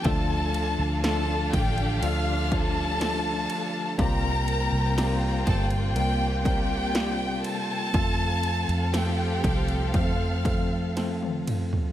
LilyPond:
<<
  \new Staff \with { instrumentName = "Violin section" } { \time 4/4 \key f \major \tempo 4 = 61 <a' a''>4 <a' a''>8 <g' g''>8 <f'' f'''>8 <a' a''>4. | <bes' bes''>4. <a' a''>8 <g' g''>8 <g' g''>4 <a' a''>8~ | <a' a''>4 <g' g''>4 <f'' f'''>4 r4 | }
  \new Staff \with { instrumentName = "Violin section" } { \time 4/4 \key f \major <d' a' f''>1 | <bes c' g''>1 | <c' a' f''>1 | }
  \new Staff \with { instrumentName = "Tine electric piano" } { \time 4/4 \key f \major <f a d' f' a'>4 <f a d' f' a'>4 <f a d' f' a'>8 <f a d' f' c''>8 <f a d' f' a'>4 | <g bes c' f' g'>4 <g bes c' f' g'>4 <g bes c' f' bes'>8 <g bes c' f' bes'>8 <g bes c' f' g'>4 | <f a c' f' a'>4 <f a c' f' a'>4 <f a c' f' c''>8 <f a c' f' a'>8 <f a c' f' a'>4 | }
  \new Staff \with { instrumentName = "Tine electric piano" } { \clef bass \time 4/4 \key f \major d4. r2 r8 | c4. r2 r8 | r1 | }
  \new Staff \with { instrumentName = "String section" } { \time 4/4 \key f \major << { <d f'>1 | <c f'>1 | <f a'>1 | } \\ { a2 g2 | bes1 | c'1 | } >> }
  \new Staff \with { instrumentName = "Fingered electric bass" } { \clef bass \time 4/4 \key f \major d,8. d,8. a,,8 d,4. r8 | c,8. c,8. g,,8 c,4. r8 | f,8. f,8. c,8 f,4. r8 | }
  \new DrumStaff \with { instrumentName = "Drums" } \drummode { \time 4/4 <bd cymr>8 cymr8 <cymr sn>8 <bd cymr>16 cymr16 cymr8 <bd cymr>8 <cymr sn>8 cymr8 | <bd cymr>8 cymr8 <cymr sn>8 <bd cymr>16 cymr16 cymr8 <bd cymr>8 <cymr sn>8 cymr8 | <bd cymr>8 cymr16 cymr16 <cymr sn>8 <bd cymr>16 cymr16 <bd cymr>8 <bd cymr>8 <cymr sn>16 tommh16 <cymr toml>16 tomfh16 | }
>>